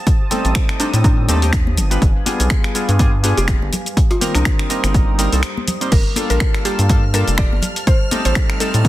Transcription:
Already playing: analog synth pad C5 G5 A5 D#6
0.07 kick, closed hi-hat, shaker
0.31 synth keys G3 A3 C4 D#4 A4, open hi-hat, high conga, shaker
0.45 analog synth bass A1, closed hi-hat, shaker
0.55 finger snap, kick, closed hi-hat, shaker
0.69 finger snap, closed hi-hat
0.79 synth keys G3 A3 C4 D#4 A4, kalimba D4, open hi-hat, shaker
0.93 analog synth bass A2, closed hi-hat, shaker
1.04 kalimba D4, kick, closed hi-hat, high conga, shaker
1.28 analog synth bass D#2, synth keys G3 A3 C4 D#4 A4, open hi-hat, shaker
1.42 synth keys G3 A3 C4 D#4 G4, open hi-hat, shaker
1.53 finger snap, kick, closed hi-hat, shaker
1.67 high conga
1.77 analog synth bass G1, analog synth pad G3 B4 F5 G#5, open hi-hat, low conga, shaker
1.91 synth keys G3 B3 D4 F4 B4, closed hi-hat, shaker
2.02 analog synth bass G1, kick, closed hi-hat, shaker
2.26 synth keys G3 B3 D4 F4 G#4, open hi-hat, high conga, shaker
2.40 analog synth bass B1, closed hi-hat, shaker
2.50 finger snap, kick, closed hi-hat, shaker
2.64 finger snap, closed hi-hat
2.74 synth keys G3 B3 D4 F4 G#4, open hi-hat, shaker
2.89 analog synth bass G2, closed hi-hat, shaker
2.99 synth keys G3 B3 D4 F4 G#4, kick, closed hi-hat, high conga, shaker
3.23 synth keys G3 B3 D4 F4 G#4, open hi-hat, shaker
3.37 analog synth bass F1, kalimba G4, closed hi-hat, shaker
3.48 synth keys G3 B3 G#4, finger snap, kick, closed hi-hat, shaker
3.62 analog synth bass G1, high conga
3.73 open hi-hat, low conga, shaker
3.86 closed hi-hat, shaker
3.97 analog synth pad C5 A#5 D#6, kick, closed hi-hat, shaker
4.11 kalimba F4, closed hi-hat
4.21 synth keys D#3 G3 A#3 C4 A#4, open hi-hat, high conga, shaker
4.35 analog synth bass C2, kalimba D4, finger snap, closed hi-hat, shaker
4.45 finger snap, kick, closed hi-hat, shaker
4.59 finger snap, closed hi-hat
4.70 synth keys G3 A#3 C4 D#4 A#4, open hi-hat, shaker
4.84 analog synth bass G1, finger snap, closed hi-hat, shaker
4.94 kick, closed hi-hat, high conga, shaker
5.18 synth keys G3 A#3 C4 D#4 A#4, open hi-hat, shaker
5.32 analog synth bass C2, synth keys G3 A#3 C4 D#4 A4, open hi-hat, shaker
5.43 finger snap, closed hi-hat, shaker
5.57 high conga
5.68 open hi-hat, low conga, shaker
5.81 synth keys G3 A#3 C4 D#4 C5, closed hi-hat, shaker
5.92 analog synth bass G1, analog synth pad A#3 F5 A5, synth pluck A#4, string machine F6, kick, closed hi-hat, crash, shaker
6.16 synth keys G3 A#3 D4 F4 A4, open hi-hat, high conga, shaker
6.30 analog synth bass A#1, synth pluck A#4, closed hi-hat, shaker
6.40 finger snap, kick, closed hi-hat, shaker
6.54 finger snap, closed hi-hat
6.65 synth keys G3 A#3 D4 F4 A4, synth pluck G4, open hi-hat, shaker
6.79 analog synth bass G2, closed hi-hat, shaker
6.89 synth keys G3 A#3 D4 F4 A4, kick, closed hi-hat, high conga, shaker
7.13 synth keys G3 A#3 D4 F4 A4, synth pluck A#4, open hi-hat, shaker
7.28 analog synth bass F1, closed hi-hat, shaker
7.38 synth keys A4, synth pluck D5, finger snap, kick, closed hi-hat, shaker
7.52 analog synth bass G1, high conga
7.62 analog synth pad C5 D#5, open hi-hat, low conga, shaker
7.76 closed hi-hat, shaker
7.87 synth pluck C5, kick, closed hi-hat, shaker
8.11 synth keys G3 A3 C4 D#4 A4, open hi-hat, high conga, shaker
8.25 analog synth bass A1, synth pluck C5, closed hi-hat, shaker
8.35 finger snap, kick, closed hi-hat, shaker
8.50 finger snap, closed hi-hat
8.60 synth keys G3 A3 C4 D#4 A4, synth pluck A4, open hi-hat, shaker
8.74 analog synth bass A2, closed hi-hat, shaker
8.85 kick, closed hi-hat

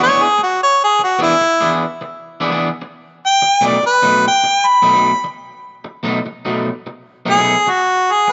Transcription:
0.03 harmonica C#5
0.09 clean electric guitar E3 B3 D4 G#4
0.23 harmonica G#4
0.38 muted clean electric guitar stroke
0.43 harmonica F#4
0.63 harmonica C#5
0.84 harmonica G#4
0.99 muted clean electric guitar stroke
1.04 harmonica F#4
1.19 clean electric guitar E3 B3 D4 G#4, harmonica E4
1.41 muted clean electric guitar stroke
1.61 clean electric guitar E3 B3 D4 G#4
2.01 muted clean electric guitar stroke
2.40 clean electric guitar E3 B3 D4 G#4
2.51 clean electric guitar E3 B3 D4 G#4
2.82 muted clean electric guitar stroke
3.26 harmonica G5
3.42 muted clean electric guitar stroke
3.61 clean electric guitar B2 F#3 A3 D#4
3.66 harmonica D5
3.83 harmonica B4, muted clean electric guitar stroke
4.02 clean electric guitar B2 F#3 A3 D#4
4.28 harmonica G5
4.44 muted clean electric guitar stroke
4.67 harmonica B5
4.82 clean electric guitar B2 F#3 A3 D#4
4.93 clean electric guitar B2 F#3 A3 D#4
5.24 muted clean electric guitar stroke
5.84 muted clean electric guitar stroke
6.03 clean electric guitar B2 F#3 A3 D#4
6.26 muted clean electric guitar stroke
6.45 clean electric guitar B2 F#3 A3 D#4
6.87 muted clean electric guitar stroke
7.26 clean electric guitar B2 F#3 A3 D#4
7.30 harmonica G#4
7.36 clean electric guitar B2 F#3 A3 D#4
7.67 harmonica F#4, muted clean electric guitar stroke
8.12 harmonica G#4
8.28 muted clean electric guitar stroke

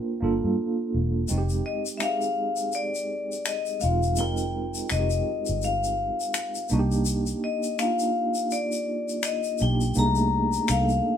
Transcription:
Already playing: tine electric piano A#3 D4 F4 A#4 C5, vibraphone G5
0.20 fingered electric bass G1, tine electric piano A#3 D4 F4 A4
0.44 fingered electric bass G2
0.94 fingered electric bass E1
1.28 fingered electric bass F1, tine electric piano G#3 C4 D#4 F#4, shaker
1.38 tine electric piano G4
1.49 shaker
1.66 vibraphone D#5
1.86 shaker
1.97 tine electric piano G#3 C4, vibraphone E5, finger snap, shaker
2.02 tine electric piano D#4 G4, vibraphone F5
2.09 tine electric piano G#4
2.21 shaker
2.56 shaker
2.72 vibraphone D5, shaker
2.95 shaker
3.32 shaker
3.46 vibraphone D#5, finger snap, shaker
3.66 shaker
3.80 fingered electric bass E1, tine electric piano G#3 C4 D#4 F4, vibraphone F5, shaker
4.03 shaker
4.16 fingered electric bass F1, tine electric piano G#3 C4 D#4, vibraphone G5, shaker
4.20 tine electric piano A#4
4.37 shaker
4.74 shaker
4.90 fingered electric bass F1, tine electric piano G#3 C4 D#4 F#4, vibraphone D#5, finger snap, shaker
4.99 tine electric piano G4
5.10 shaker
5.46 fingered electric bass G1, shaker
5.62 vibraphone F5, shaker
5.84 shaker
6.20 shaker
6.34 finger snap, shaker
6.55 shaker
6.69 fingered electric bass C2, tine electric piano A#3 D4 D#4, shaker
6.73 tine electric piano F#4
6.79 tine electric piano G4
6.91 shaker
7.05 shaker
7.26 shaker
7.44 vibraphone D#5
7.63 shaker
7.79 tine electric piano A#3 D4 D#4 F4, vibraphone F5, finger snap, shaker
7.99 shaker
8.34 shaker
8.51 vibraphone D5, shaker
8.72 shaker
9.09 shaker
9.23 vibraphone D#5, finger snap, shaker
9.43 shaker
9.58 fingered electric bass B1, tine electric piano A#3 D4 D#4, vibraphone G5, shaker
9.63 tine electric piano G4
9.81 shaker
9.94 fingered electric bass C2, tine electric piano A#3 D4 D#4, shaker
9.99 tine electric piano G#4, vibraphone A#5
10.06 tine electric piano A3
10.15 shaker
10.53 shaker
10.68 fingered electric bass C2, tine electric piano A#3 D4 D#4 A4, vibraphone F5, finger snap, shaker
10.89 shaker

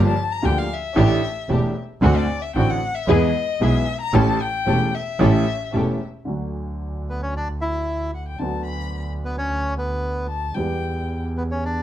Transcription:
Already playing: upright piano G1 G2 F3 A#3 D4 G4, double bass G1, string section A#3 F4 G4
0.05 violin A5
0.32 violin A#5
0.42 upright piano D2 D3 F3 A#3 D4 G4, double bass D2, string section A#3 F4 G4, violin G5
0.58 violin F5
0.74 violin E5
0.96 upright piano A1 A2 E3 A3 D4 G4, double bass A1, string section A3 D4 G4
1.48 double bass E1, upright piano E1 E2 E3 A3 D4 G4, string section A3 D4 G4
2.01 double bass D2, upright piano D2 D3 A3 C4 F#4, string section C4 D4 F#4, violin F#5
2.17 violin D5
2.42 violin E5
2.55 double bass A1, upright piano A1 A2 D3 A3 C4 F#4, string section C4 D4 F#4, violin G5
2.70 violin F#5
2.95 violin E5
3.07 double bass E2, upright piano E2 E3 G#3 B3 G#4, string section B3 E4 G#4, violin D#5
3.60 double bass B1, upright piano B1 B2 E3 G#3 B3 G#4, string section B3 E4 G#4, violin E5
4.01 violin A#5
4.13 double bass A1, upright piano A1 A2 E3 A3 C#4 G4, string section C#4 G4 A4, violin A5
4.42 violin G5
4.66 double bass E1, upright piano E1 E2 E3 A3 C#4 G4, string section C#4 G4 A4
4.95 violin E5
5.19 upright piano A1 A2 E3 A3 C#4 G4, double bass A1, string section C#4 G4 A4
5.73 upright piano E1 E2 E3 A3 C#4 G4, double bass E1, string section C#4 G4 A4
6.25 double bass D2, upright piano D2 D3 F#3 A3 F#4
7.10 bandoneon B3
7.22 bandoneon C#4
7.37 bandoneon D4
7.61 bandoneon E4
8.15 violin F#5
8.28 violin G5
8.38 double bass D2, upright piano D2 D3 F#3 B3, violin A5
8.43 upright piano F#4
8.65 violin B5
9.25 bandoneon B3
9.38 bandoneon C#4
9.78 bandoneon B3
10.28 violin A5
10.54 double bass E2, upright piano E2 E3 G3 B3 G4, violin G5
11.37 bandoneon B3
11.51 bandoneon C#4
11.65 bandoneon D4

